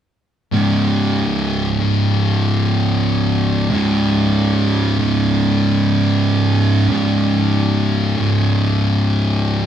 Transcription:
0.52 C#2 G#2 C#3
1.80 C#2 G#2 C#3
3.70 C#2 G#2 C#3
4.98 G#2 C#3
5.03 C#2
6.88 C#2 G#2 C#3
8.17 C#2 G#2 C#3

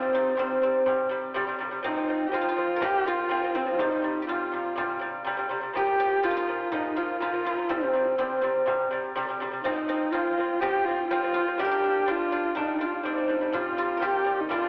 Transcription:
Already playing: C4 D#4 F4 G4
0.01 C3 G3, frame drum
0.13 C3 G3 D#4
0.25 frame drum
0.37 C3 G3 C4, frame drum
0.62 C3 G3 C4, frame drum
0.86 C3 G3, frame drum
1.09 C3 G3
1.34 C3 G3, frame drum
1.47 C3 G3
1.59 C3 G3, frame drum
1.71 C3 G3
1.83 F3 C4 D#4, frame drum
1.87 D#4
1.96 F3 C4, frame drum
2.08 F3 C4
2.23 frame drum
2.27 G4
2.32 F3 C4 F4, frame drum
2.41 D#4
2.49 F4
2.56 F3 C4, frame drum
2.76 A#4
2.80 F3 C4 G4, frame drum
3.05 F3 C4 F4
3.29 F3 C4, frame drum
3.43 F3 C4
3.55 F3 C4, frame drum
3.66 F3 C4
3.72 F4
3.78 C3 G3 D#4, frame drum
3.91 C3 G3, frame drum
4.02 C3 G3
4.18 frame drum
4.22 G4
4.27 C3 G3 F4, frame drum
4.52 C3 G3, frame drum
4.76 C3 G3 F4, frame drum
4.99 C3 G3
5.24 C3 G3, frame drum
5.37 C3 G3
5.49 C3 G3, frame drum
5.61 C3 G3
5.73 A#2 F3 G4, frame drum
5.85 A#2 F3, frame drum
5.98 A#2 F3 G4
6.12 frame drum
6.23 A#2 F3 F4, frame drum
6.31 D#4
6.37 F4
6.47 A#2 F3, frame drum
6.72 A#2 F3 D#4, frame drum
6.96 A#2 F3 F4
7.20 A#2 F3 F4, frame drum
7.32 A#2 F3
7.45 A#2 F3 D#4, frame drum
7.56 A#2 F3
7.69 C3 G3 C4, frame drum
7.81 C3 G3, frame drum
7.93 C3 G3
8.06 frame drum
8.18 C3 G3 C4, frame drum
8.41 C3 G3 C4, frame drum
8.66 C3 G3, frame drum
8.91 C3 G3
9.16 C3 G3, frame drum
9.28 C3 G3
9.40 C3 G3, frame drum
9.52 C3 G3
9.63 F3 C4 D#4, frame drum
9.76 F3 C4, frame drum
9.88 F3 C4 D#4
10.02 frame drum
10.11 F3 C4 F4, frame drum
10.38 F3 C4, frame drum
10.60 F3 C4 G4, frame drum
10.85 F3 C4 F4
11.08 F3 F4, frame drum
11.12 C4
11.23 F3 C4
11.34 F3 C4 F4, frame drum
11.46 F3 C4
11.58 G3 D4 G4, frame drum
11.65 A#4
11.69 G3 D4 G4, frame drum
11.82 G3 D4
11.98 frame drum
12.06 G3 D4 F4, frame drum
12.11 F4
12.31 G3 D4 F4, frame drum
12.55 G3 D4 D#4, frame drum
12.79 G3 D4 F4
12.84 F4
13.03 G3 C4 D4 D#4, frame drum
13.16 G3 D4
13.28 G3 D4, frame drum
13.41 G3 D4
13.53 C3 G3 F4, frame drum
13.77 C3 G3 F4
13.91 frame drum
13.97 C3 A#4
14.02 G3 G4, frame drum
14.25 C3 G3, frame drum
14.39 D#4, frame drum
14.49 G3 D4 F4, frame drum
14.62 G3 D4

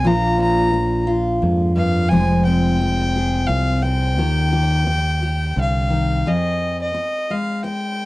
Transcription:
0.04 A#1 A#2 F3 A#3 D4 F4 A#5
0.38 D4 A#5
0.73 muted steel-string acoustic guitar stroke
1.07 F4
1.42 F2 G#2
1.76 G2 F5
2.08 F1 F2 F3 G#3 G#5
2.13 C4 G#4
2.45 C4 G5
2.81 muted steel-string acoustic guitar stroke
3.16 G#4
3.47 C2 F5, muted steel-string acoustic guitar stroke
3.82 C4 G5
4.18 D#2 D#3 G4
4.53 G4
4.87 muted steel-string acoustic guitar stroke
5.23 G4
5.56 C2 D3
5.61 F5
5.90 D#3
6.26 F2 G#4 D#5
6.82 D#5
6.94 muted steel-string acoustic guitar stroke
7.30 G#3 F5
7.64 G5, muted steel-string acoustic guitar stroke

